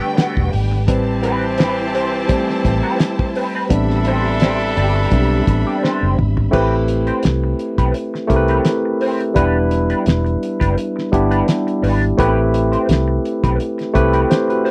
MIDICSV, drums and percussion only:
0, 0, Header, 1, 2, 480
1, 0, Start_track
1, 0, Key_signature, 0, "minor"
1, 0, Tempo, 706631
1, 600, Time_signature, 4, 2, 24, 8
1, 9992, End_track
2, 0, Start_track
2, 0, Title_t, "Drums"
2, 118, Note_on_c, 9, 42, 84
2, 123, Note_on_c, 9, 38, 106
2, 186, Note_off_c, 9, 42, 0
2, 191, Note_off_c, 9, 38, 0
2, 250, Note_on_c, 9, 36, 84
2, 318, Note_off_c, 9, 36, 0
2, 360, Note_on_c, 9, 46, 74
2, 428, Note_off_c, 9, 46, 0
2, 598, Note_on_c, 9, 36, 102
2, 598, Note_on_c, 9, 42, 95
2, 666, Note_off_c, 9, 36, 0
2, 666, Note_off_c, 9, 42, 0
2, 838, Note_on_c, 9, 42, 85
2, 906, Note_off_c, 9, 42, 0
2, 1071, Note_on_c, 9, 42, 78
2, 1087, Note_on_c, 9, 38, 102
2, 1139, Note_off_c, 9, 42, 0
2, 1155, Note_off_c, 9, 38, 0
2, 1323, Note_on_c, 9, 42, 75
2, 1391, Note_off_c, 9, 42, 0
2, 1555, Note_on_c, 9, 42, 77
2, 1558, Note_on_c, 9, 36, 88
2, 1623, Note_off_c, 9, 42, 0
2, 1626, Note_off_c, 9, 36, 0
2, 1699, Note_on_c, 9, 38, 31
2, 1767, Note_off_c, 9, 38, 0
2, 1799, Note_on_c, 9, 36, 86
2, 1802, Note_on_c, 9, 42, 65
2, 1867, Note_off_c, 9, 36, 0
2, 1870, Note_off_c, 9, 42, 0
2, 2035, Note_on_c, 9, 42, 90
2, 2039, Note_on_c, 9, 38, 102
2, 2103, Note_off_c, 9, 42, 0
2, 2107, Note_off_c, 9, 38, 0
2, 2168, Note_on_c, 9, 36, 85
2, 2236, Note_off_c, 9, 36, 0
2, 2277, Note_on_c, 9, 46, 69
2, 2345, Note_off_c, 9, 46, 0
2, 2515, Note_on_c, 9, 42, 100
2, 2516, Note_on_c, 9, 36, 107
2, 2583, Note_off_c, 9, 42, 0
2, 2584, Note_off_c, 9, 36, 0
2, 2653, Note_on_c, 9, 38, 33
2, 2721, Note_off_c, 9, 38, 0
2, 2749, Note_on_c, 9, 42, 87
2, 2817, Note_off_c, 9, 42, 0
2, 2987, Note_on_c, 9, 42, 79
2, 3003, Note_on_c, 9, 38, 97
2, 3055, Note_off_c, 9, 42, 0
2, 3071, Note_off_c, 9, 38, 0
2, 3123, Note_on_c, 9, 42, 45
2, 3191, Note_off_c, 9, 42, 0
2, 3239, Note_on_c, 9, 42, 75
2, 3307, Note_off_c, 9, 42, 0
2, 3472, Note_on_c, 9, 42, 80
2, 3476, Note_on_c, 9, 36, 89
2, 3540, Note_off_c, 9, 42, 0
2, 3544, Note_off_c, 9, 36, 0
2, 3719, Note_on_c, 9, 36, 81
2, 3720, Note_on_c, 9, 42, 65
2, 3787, Note_off_c, 9, 36, 0
2, 3788, Note_off_c, 9, 42, 0
2, 3970, Note_on_c, 9, 38, 55
2, 4038, Note_off_c, 9, 38, 0
2, 4202, Note_on_c, 9, 45, 85
2, 4270, Note_off_c, 9, 45, 0
2, 4328, Note_on_c, 9, 43, 78
2, 4396, Note_off_c, 9, 43, 0
2, 4438, Note_on_c, 9, 36, 104
2, 4438, Note_on_c, 9, 49, 86
2, 4506, Note_off_c, 9, 36, 0
2, 4506, Note_off_c, 9, 49, 0
2, 4674, Note_on_c, 9, 42, 87
2, 4742, Note_off_c, 9, 42, 0
2, 4802, Note_on_c, 9, 42, 48
2, 4869, Note_off_c, 9, 42, 0
2, 4909, Note_on_c, 9, 42, 80
2, 4925, Note_on_c, 9, 38, 92
2, 4977, Note_off_c, 9, 42, 0
2, 4993, Note_off_c, 9, 38, 0
2, 5157, Note_on_c, 9, 42, 69
2, 5225, Note_off_c, 9, 42, 0
2, 5286, Note_on_c, 9, 36, 79
2, 5290, Note_on_c, 9, 42, 48
2, 5354, Note_off_c, 9, 36, 0
2, 5358, Note_off_c, 9, 42, 0
2, 5395, Note_on_c, 9, 42, 73
2, 5463, Note_off_c, 9, 42, 0
2, 5535, Note_on_c, 9, 38, 32
2, 5603, Note_off_c, 9, 38, 0
2, 5638, Note_on_c, 9, 36, 77
2, 5640, Note_on_c, 9, 42, 68
2, 5706, Note_off_c, 9, 36, 0
2, 5708, Note_off_c, 9, 42, 0
2, 5762, Note_on_c, 9, 42, 47
2, 5830, Note_off_c, 9, 42, 0
2, 5874, Note_on_c, 9, 42, 92
2, 5878, Note_on_c, 9, 38, 103
2, 5942, Note_off_c, 9, 42, 0
2, 5946, Note_off_c, 9, 38, 0
2, 6119, Note_on_c, 9, 46, 73
2, 6187, Note_off_c, 9, 46, 0
2, 6253, Note_on_c, 9, 42, 38
2, 6321, Note_off_c, 9, 42, 0
2, 6357, Note_on_c, 9, 36, 111
2, 6358, Note_on_c, 9, 42, 91
2, 6425, Note_off_c, 9, 36, 0
2, 6426, Note_off_c, 9, 42, 0
2, 6596, Note_on_c, 9, 42, 82
2, 6664, Note_off_c, 9, 42, 0
2, 6724, Note_on_c, 9, 42, 48
2, 6792, Note_off_c, 9, 42, 0
2, 6833, Note_on_c, 9, 42, 76
2, 6850, Note_on_c, 9, 38, 91
2, 6901, Note_off_c, 9, 42, 0
2, 6917, Note_off_c, 9, 38, 0
2, 6972, Note_on_c, 9, 42, 29
2, 7040, Note_off_c, 9, 42, 0
2, 7084, Note_on_c, 9, 42, 69
2, 7152, Note_off_c, 9, 42, 0
2, 7209, Note_on_c, 9, 36, 92
2, 7215, Note_on_c, 9, 42, 52
2, 7277, Note_off_c, 9, 36, 0
2, 7283, Note_off_c, 9, 42, 0
2, 7320, Note_on_c, 9, 42, 82
2, 7388, Note_off_c, 9, 42, 0
2, 7462, Note_on_c, 9, 38, 32
2, 7530, Note_off_c, 9, 38, 0
2, 7560, Note_on_c, 9, 36, 83
2, 7566, Note_on_c, 9, 42, 65
2, 7628, Note_off_c, 9, 36, 0
2, 7634, Note_off_c, 9, 42, 0
2, 7686, Note_on_c, 9, 42, 49
2, 7754, Note_off_c, 9, 42, 0
2, 7798, Note_on_c, 9, 42, 89
2, 7803, Note_on_c, 9, 38, 102
2, 7866, Note_off_c, 9, 42, 0
2, 7871, Note_off_c, 9, 38, 0
2, 7932, Note_on_c, 9, 42, 34
2, 8000, Note_off_c, 9, 42, 0
2, 8041, Note_on_c, 9, 46, 68
2, 8109, Note_off_c, 9, 46, 0
2, 8169, Note_on_c, 9, 42, 37
2, 8237, Note_off_c, 9, 42, 0
2, 8278, Note_on_c, 9, 36, 107
2, 8283, Note_on_c, 9, 42, 86
2, 8346, Note_off_c, 9, 36, 0
2, 8351, Note_off_c, 9, 42, 0
2, 8519, Note_on_c, 9, 42, 82
2, 8587, Note_off_c, 9, 42, 0
2, 8648, Note_on_c, 9, 42, 47
2, 8716, Note_off_c, 9, 42, 0
2, 8755, Note_on_c, 9, 42, 86
2, 8771, Note_on_c, 9, 38, 102
2, 8823, Note_off_c, 9, 42, 0
2, 8839, Note_off_c, 9, 38, 0
2, 9003, Note_on_c, 9, 42, 70
2, 9070, Note_off_c, 9, 42, 0
2, 9127, Note_on_c, 9, 36, 91
2, 9132, Note_on_c, 9, 42, 51
2, 9195, Note_off_c, 9, 36, 0
2, 9199, Note_off_c, 9, 42, 0
2, 9238, Note_on_c, 9, 42, 75
2, 9306, Note_off_c, 9, 42, 0
2, 9367, Note_on_c, 9, 42, 36
2, 9378, Note_on_c, 9, 38, 30
2, 9435, Note_off_c, 9, 42, 0
2, 9446, Note_off_c, 9, 38, 0
2, 9477, Note_on_c, 9, 36, 85
2, 9480, Note_on_c, 9, 42, 63
2, 9545, Note_off_c, 9, 36, 0
2, 9548, Note_off_c, 9, 42, 0
2, 9601, Note_on_c, 9, 42, 54
2, 9669, Note_off_c, 9, 42, 0
2, 9719, Note_on_c, 9, 42, 88
2, 9724, Note_on_c, 9, 38, 95
2, 9787, Note_off_c, 9, 42, 0
2, 9792, Note_off_c, 9, 38, 0
2, 9850, Note_on_c, 9, 42, 33
2, 9918, Note_off_c, 9, 42, 0
2, 9958, Note_on_c, 9, 46, 73
2, 9992, Note_off_c, 9, 46, 0
2, 9992, End_track
0, 0, End_of_file